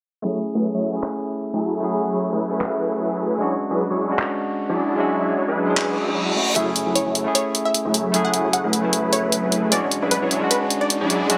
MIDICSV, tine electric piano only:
0, 0, Header, 1, 2, 480
1, 0, Start_track
1, 0, Key_signature, 3, "minor"
1, 0, Tempo, 394737
1, 298, Time_signature, 4, 2, 24, 8
1, 13834, End_track
2, 0, Start_track
2, 0, Title_t, "Tine electric piano"
2, 0, Program_c, 0, 4
2, 271, Note_on_c, 0, 57, 84
2, 287, Note_on_c, 0, 61, 82
2, 304, Note_on_c, 0, 64, 85
2, 320, Note_on_c, 0, 68, 96
2, 502, Control_c, 0, 64, 127
2, 1103, Note_off_c, 0, 57, 0
2, 1111, Note_off_c, 0, 61, 0
2, 1119, Note_off_c, 0, 64, 0
2, 1122, Note_on_c, 0, 57, 79
2, 1127, Note_off_c, 0, 68, 0
2, 1138, Note_on_c, 0, 61, 76
2, 1155, Note_on_c, 0, 64, 77
2, 1171, Note_on_c, 0, 68, 89
2, 2179, Note_off_c, 0, 57, 0
2, 2187, Note_off_c, 0, 61, 0
2, 2191, Note_on_c, 0, 57, 94
2, 2195, Note_off_c, 0, 64, 0
2, 2203, Note_off_c, 0, 68, 0
2, 2207, Note_on_c, 0, 61, 80
2, 2223, Note_on_c, 0, 64, 81
2, 2239, Note_on_c, 0, 68, 101
2, 3022, Note_off_c, 0, 57, 0
2, 3031, Note_off_c, 0, 61, 0
2, 3039, Note_off_c, 0, 64, 0
2, 3040, Note_on_c, 0, 57, 82
2, 3047, Note_off_c, 0, 68, 0
2, 3057, Note_on_c, 0, 61, 79
2, 3073, Note_on_c, 0, 64, 77
2, 4098, Note_off_c, 0, 57, 0
2, 4106, Note_off_c, 0, 61, 0
2, 4110, Note_on_c, 0, 56, 97
2, 4114, Note_off_c, 0, 64, 0
2, 4126, Note_on_c, 0, 61, 85
2, 4142, Note_on_c, 0, 62, 85
2, 4153, Control_c, 0, 64, 0
2, 4158, Note_on_c, 0, 66, 103
2, 4366, Control_c, 0, 64, 127
2, 4942, Note_off_c, 0, 56, 0
2, 4950, Note_off_c, 0, 61, 0
2, 4958, Note_off_c, 0, 62, 0
2, 4961, Note_on_c, 0, 56, 81
2, 4966, Note_off_c, 0, 66, 0
2, 4977, Note_on_c, 0, 61, 76
2, 4993, Note_on_c, 0, 62, 78
2, 5009, Note_on_c, 0, 66, 95
2, 6018, Note_off_c, 0, 56, 0
2, 6026, Note_off_c, 0, 61, 0
2, 6032, Note_on_c, 0, 56, 93
2, 6034, Note_off_c, 0, 62, 0
2, 6042, Note_off_c, 0, 66, 0
2, 6049, Note_on_c, 0, 61, 83
2, 6064, Note_on_c, 0, 62, 82
2, 6080, Note_on_c, 0, 66, 101
2, 6863, Note_off_c, 0, 56, 0
2, 6871, Note_off_c, 0, 61, 0
2, 6879, Note_off_c, 0, 62, 0
2, 6882, Note_on_c, 0, 56, 85
2, 6887, Note_off_c, 0, 66, 0
2, 6898, Note_on_c, 0, 61, 81
2, 6913, Note_on_c, 0, 62, 81
2, 6930, Note_on_c, 0, 68, 92
2, 7703, Note_off_c, 0, 56, 0
2, 7711, Note_off_c, 0, 61, 0
2, 7719, Note_off_c, 0, 62, 0
2, 7726, Note_on_c, 0, 57, 71
2, 7727, Note_off_c, 0, 68, 0
2, 7734, Note_on_c, 0, 61, 68
2, 7742, Note_on_c, 0, 64, 69
2, 7750, Note_on_c, 0, 66, 84
2, 7755, Control_c, 0, 64, 0
2, 7856, Control_c, 0, 64, 127
2, 7938, Note_off_c, 0, 57, 0
2, 7949, Note_off_c, 0, 61, 0
2, 7953, Note_off_c, 0, 64, 0
2, 7953, Note_on_c, 0, 57, 93
2, 7957, Note_off_c, 0, 66, 0
2, 7969, Note_on_c, 0, 61, 87
2, 7985, Note_on_c, 0, 64, 86
2, 7993, Control_c, 0, 64, 0
2, 8002, Note_on_c, 0, 68, 101
2, 8210, Control_c, 0, 64, 127
2, 8783, Note_off_c, 0, 57, 0
2, 8792, Note_off_c, 0, 61, 0
2, 8800, Note_off_c, 0, 64, 0
2, 8802, Note_on_c, 0, 57, 87
2, 8808, Note_off_c, 0, 68, 0
2, 8819, Note_on_c, 0, 61, 75
2, 8835, Note_on_c, 0, 64, 81
2, 8851, Note_on_c, 0, 68, 91
2, 9859, Note_off_c, 0, 57, 0
2, 9867, Note_off_c, 0, 61, 0
2, 9873, Note_on_c, 0, 57, 93
2, 9875, Note_off_c, 0, 64, 0
2, 9883, Note_off_c, 0, 68, 0
2, 9889, Note_on_c, 0, 61, 84
2, 9905, Note_on_c, 0, 64, 84
2, 9922, Note_on_c, 0, 68, 104
2, 10703, Note_off_c, 0, 57, 0
2, 10712, Note_off_c, 0, 61, 0
2, 10720, Note_off_c, 0, 64, 0
2, 10722, Note_on_c, 0, 57, 85
2, 10728, Note_off_c, 0, 68, 0
2, 10739, Note_on_c, 0, 61, 79
2, 10755, Note_on_c, 0, 64, 84
2, 11779, Note_off_c, 0, 57, 0
2, 11787, Note_off_c, 0, 61, 0
2, 11793, Note_on_c, 0, 56, 98
2, 11795, Note_off_c, 0, 64, 0
2, 11810, Note_on_c, 0, 61, 87
2, 11825, Note_on_c, 0, 62, 91
2, 11836, Control_c, 0, 64, 0
2, 11842, Note_on_c, 0, 66, 107
2, 12015, Control_c, 0, 64, 127
2, 12624, Note_off_c, 0, 56, 0
2, 12632, Note_off_c, 0, 61, 0
2, 12640, Note_off_c, 0, 62, 0
2, 12642, Note_on_c, 0, 56, 89
2, 12648, Note_off_c, 0, 66, 0
2, 12658, Note_on_c, 0, 61, 80
2, 12674, Note_on_c, 0, 62, 85
2, 12690, Note_on_c, 0, 66, 99
2, 13698, Note_off_c, 0, 56, 0
2, 13706, Note_off_c, 0, 61, 0
2, 13712, Note_on_c, 0, 56, 99
2, 13714, Note_off_c, 0, 62, 0
2, 13723, Note_off_c, 0, 66, 0
2, 13728, Note_on_c, 0, 61, 88
2, 13745, Note_on_c, 0, 62, 87
2, 13761, Note_on_c, 0, 66, 105
2, 13834, Note_off_c, 0, 56, 0
2, 13834, Note_off_c, 0, 61, 0
2, 13834, Note_off_c, 0, 62, 0
2, 13834, Note_off_c, 0, 66, 0
2, 13834, End_track
0, 0, End_of_file